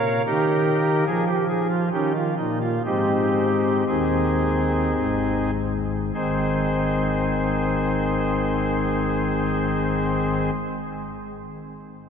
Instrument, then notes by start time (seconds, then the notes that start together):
pipe organ
Already playing: A#2 A#4 C#5 F5
0.26 D#3 D#4 G4 A#4
1.07 F3 G#4
1.27 G4
1.49 G#4
1.70 F4
1.93 D#3 C#4 D#4 G4
2.15 F4
2.37 A#2 D#4
2.62 F4
2.85 G#2 G#3 C4 D#4 G4
3.88 D#2 D#3 C4 D#4 G#4
4.96 G#1 G#2
6.15 G#1 G#2 D#3 C4 D#4 G#4 C5